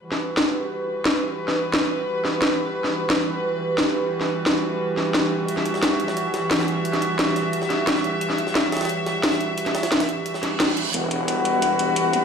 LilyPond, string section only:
\new Staff \with { instrumentName = "String section" } { \time 4/4 \key e \minor \tempo 4 = 176 << { b'1~ | b'1~ | b'1~ | b'1 |
e''1~ | e''1~ | e''1~ | e''1 |
fis'1 | } \\ { <e g fis'>1~ | <e g fis'>1~ | <e g fis'>1~ | <e g fis'>1~ |
<e g fis'>1~ | <e g fis'>1~ | <e g fis'>1~ | <e g fis'>1 |
<e g b>1 | } >> }